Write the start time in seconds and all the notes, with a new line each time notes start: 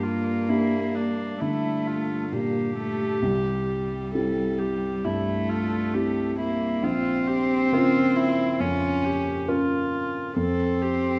Already playing: G2 A#3
0.03 F4
0.49 A#3 D4 E4 G4
0.95 D4
1.41 D3 A3 E4
1.87 F4
2.32 A#2 A#3 D4 G4
2.77 A3
3.22 C2 G3
4.14 C4 E4 G4 A4
4.59 G4
5.04 G2 A3 E4
5.49 F4
5.94 C4 E4 G4
6.39 A#3 E4
6.83 A#1 C4 F4
7.27 G4
7.72 C#3 F4 A#4
8.16 E4
8.60 F2 C#4 F4
9.05 G4
9.47 C#4 F4 A#4
10.36 F2 C4 A4
10.82 G4